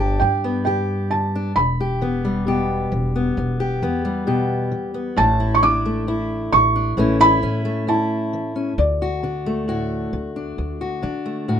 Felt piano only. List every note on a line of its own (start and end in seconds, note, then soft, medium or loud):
0.00 0.18 A5 medium
0.20 0.63 G5 medium
0.65 1.07 G5 medium
1.11 1.53 A5 medium
1.56 3.32 B5 medium
5.17 5.57 A5 medium
5.55 5.62 C#6 medium
5.63 6.55 D6 medium
6.53 7.22 C#6 medium
7.21 7.90 B5 loud
7.89 8.74 A5 medium
8.78 11.45 D5 medium